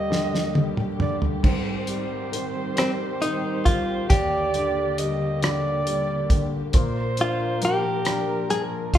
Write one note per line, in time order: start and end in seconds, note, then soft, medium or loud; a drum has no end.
0.00 1.39 D#2 medium
0.00 0.10 D3 soft
0.00 1.40 D3 soft
0.00 0.53 G3 soft
0.00 4.05 G3 medium
0.00 1.40 A#3 medium
0.00 0.50 G4 medium
0.00 6.69 G4 medium
0.00 0.69 D#5 medium
0.10 0.97 D3 medium
0.10 snare soft
0.35 snare soft
0.54 1.41 G3 soft
0.54 high tom medium
0.77 mid tom medium
0.99 1.42 D3 soft
0.99 1.17 D5 medium
0.99 mid tom medium
1.22 floor tom medium
1.43 4.06 G#2 medium
1.43 4.08 D#3 medium
1.43 4.08 C4 medium
1.43 4.12 C5 medium
1.43 kick medium
1.43 crash medium
1.87 2.74 G3 soft
1.87 closed hi-hat soft
2.32 3.20 D#3 soft
2.32 closed hi-hat medium
2.76 3.64 G3 soft
2.76 2.91 C4 medium
2.76 cross-stick medium
2.76 closed hi-hat medium
3.21 4.07 D#3 soft
3.21 3.67 D#4 medium
3.21 closed hi-hat medium
3.65 4.09 G3 soft
3.65 4.09 F4 medium
3.65 kick medium
3.65 closed hi-hat medium
4.09 6.70 D#2 medium
4.09 6.71 D3 medium
4.09 8.98 A#3 medium
4.09 5.82 G4 medium
4.09 5.00 D5 medium
4.09 kick medium
4.09 closed hi-hat medium
4.54 5.41 D3 soft
4.54 closed hi-hat soft
4.98 5.85 G3 soft
4.98 5.43 D#5 medium
4.98 closed hi-hat medium
5.42 6.30 D3 soft
5.42 6.47 D5 medium
5.42 cross-stick medium
5.42 closed hi-hat medium
5.87 6.72 G3 soft
5.87 closed hi-hat medium
6.30 6.73 D3 soft
6.30 kick medium
6.30 closed hi-hat medium
6.73 8.98 A#2 medium
6.73 8.98 F3 medium
6.73 8.98 A#4 medium
6.73 7.64 C5 medium
6.73 kick medium
6.73 closed hi-hat medium
7.17 8.06 D4 soft
7.17 7.64 F4 medium
7.17 closed hi-hat soft
7.62 8.48 F3 soft
7.62 8.50 G4 medium
7.62 8.95 A#4 medium
7.62 closed hi-hat medium
8.05 8.91 D4 medium
8.05 cross-stick medium
8.05 closed hi-hat medium
8.50 8.98 F3 soft
8.50 8.62 G#4 medium
8.50 closed hi-hat medium
8.93 8.98 D4 soft
8.93 8.98 G#4 medium
8.93 kick medium
8.93 closed hi-hat medium